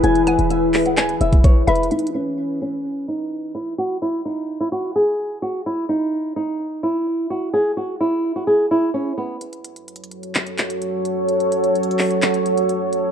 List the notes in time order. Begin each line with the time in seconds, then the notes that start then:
Already playing: E3 E4 G#4 B4
0.04 E1 G#5, closed hi-hat
0.15 closed hi-hat
0.27 F#5 G#5, closed hi-hat
0.39 E1, closed hi-hat
0.50 E5, closed hi-hat
0.74 clap, open hi-hat
0.86 F#5, closed hi-hat
0.97 G#5, clap, closed hi-hat
1.09 closed hi-hat
1.21 E1 E5, closed hi-hat
1.33 kick, closed hi-hat
1.44 C#5, kick, closed hi-hat
1.67 E1 B4 E5, closed hi-hat
1.75 closed hi-hat
1.83 closed hi-hat
1.91 D#4, closed hi-hat
1.99 closed hi-hat
2.07 closed hi-hat
2.15 C#4
2.62 C#4
3.08 D#4
3.55 E4
3.78 F#4
4.02 E4
4.25 D#4
4.61 E4
4.72 F#4
4.96 G#4
5.42 F#4
5.66 E4
5.89 D#4
6.36 D#4
6.83 E4
7.30 F#4
7.54 G#4
7.77 F#4
8.01 E4
8.36 F#4
8.47 G#4
8.71 E4
8.94 C#4
9.18 B3
9.41 F#3 F#4 A4 C#5, closed hi-hat
9.53 closed hi-hat
9.65 closed hi-hat
9.76 closed hi-hat
9.88 closed hi-hat
9.96 closed hi-hat
10.04 closed hi-hat
10.11 closed hi-hat
10.23 closed hi-hat
10.35 clap, closed hi-hat
10.47 closed hi-hat
10.58 clap, closed hi-hat
10.70 closed hi-hat
10.82 closed hi-hat
11.05 closed hi-hat
11.29 closed hi-hat
11.40 closed hi-hat
11.52 closed hi-hat
11.64 closed hi-hat
11.75 closed hi-hat
11.83 closed hi-hat
11.91 closed hi-hat
11.99 clap, open hi-hat
12.11 closed hi-hat
12.22 clap, closed hi-hat
12.34 closed hi-hat
12.46 closed hi-hat
12.58 closed hi-hat
12.69 closed hi-hat
12.93 closed hi-hat